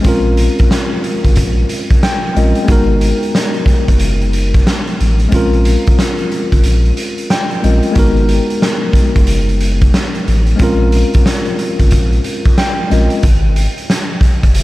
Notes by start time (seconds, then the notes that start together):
0.01 G#3 C4 C#4, kick, closed hi-hat
0.05 A#1 F4 A#4
0.37 closed hi-hat
0.59 kick, closed hi-hat
0.71 snare, closed hi-hat
1.04 closed hi-hat
1.24 G#1, kick, closed hi-hat
1.36 A#1, kick, closed hi-hat
1.69 closed hi-hat
1.90 kick, closed hi-hat
2.03 G5, snare, closed hi-hat
2.35 A#1 G#3 C4 C#4 F4 A#4 D#5, closed hi-hat
2.55 closed hi-hat
2.64 G#3 B3 D#4, closed hi-hat
2.68 G#1 F#4 A#4, kick
3.01 closed hi-hat
3.23 closed hi-hat
3.35 snare, closed hi-hat
3.54 closed hi-hat
3.66 kick, closed hi-hat
3.88 F#1, kick, closed hi-hat
4.00 closed hi-hat
4.21 closed hi-hat
4.33 closed hi-hat
4.54 kick, snare, closed hi-hat
4.67 snare, closed hi-hat
4.87 closed hi-hat
5.00 A1, closed hi-hat
5.19 closed hi-hat
5.29 G#3 C4 C#4, kick, closed hi-hat
5.33 A#1 F4 A#4
5.53 closed hi-hat
5.65 closed hi-hat
5.87 kick, closed hi-hat
5.99 snare, closed hi-hat
6.18 closed hi-hat
6.32 closed hi-hat
6.52 G#1, kick, closed hi-hat
6.63 A#1, closed hi-hat
6.85 closed hi-hat
6.97 closed hi-hat
7.18 closed hi-hat
7.30 G5, snare, closed hi-hat
7.51 closed hi-hat
7.62 A#1 G#3 C4 C#4 F4 A#4 D#5, closed hi-hat
7.83 closed hi-hat
7.92 G#3 B3 D#4, closed hi-hat
7.96 G#1 F#4 A#4, kick
8.17 closed hi-hat
8.29 closed hi-hat
8.50 closed hi-hat
8.62 snare, closed hi-hat
8.93 kick, closed hi-hat
9.16 F#1, kick, closed hi-hat
9.27 closed hi-hat
9.49 closed hi-hat
9.61 closed hi-hat
9.81 kick, closed hi-hat
9.94 snare, closed hi-hat
10.15 closed hi-hat
10.28 A1, closed hi-hat
10.47 closed hi-hat
10.56 G#3 C4 C#4, kick, closed hi-hat
10.60 A#1 F4 A#4
10.92 closed hi-hat
11.14 kick, closed hi-hat
11.26 snare, closed hi-hat
11.45 closed hi-hat
11.59 closed hi-hat
11.79 G#1, kick, closed hi-hat
11.91 A#1, kick, closed hi-hat
12.12 closed hi-hat
12.24 closed hi-hat
12.45 kick, closed hi-hat
12.58 G5, snare, closed hi-hat
12.90 A#1 G#3 C4 C#4 F4 A#4 D#5, snare, closed hi-hat
13.10 closed hi-hat
13.23 G#1, kick, closed hi-hat
13.56 closed hi-hat
13.78 closed hi-hat
13.90 snare, closed hi-hat
14.21 kick, closed hi-hat
14.43 F#1, kick, closed hi-hat
14.55 closed hi-hat